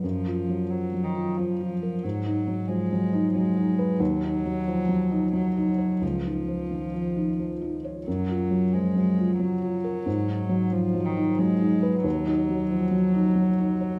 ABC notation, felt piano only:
X:1
M:3/4
L:1/8
Q:1/4=90
K:D#m
V:1 name="Felt piano" clef=bass
(3F,, E F, (3E, F, E (3E, E A | (3G,, D F, (3E, F, D (3F, D B | (3D,, D F, (3E, F, D (3F, D c | (3C,, D E, (3D, E, D (3E, D c |
(3F,, E F, (3E, F, E (3F, E A | (3G,, D F, (3E, F, D (3F, D B | (3D,, D F, (3E, F, D (3F, D c |]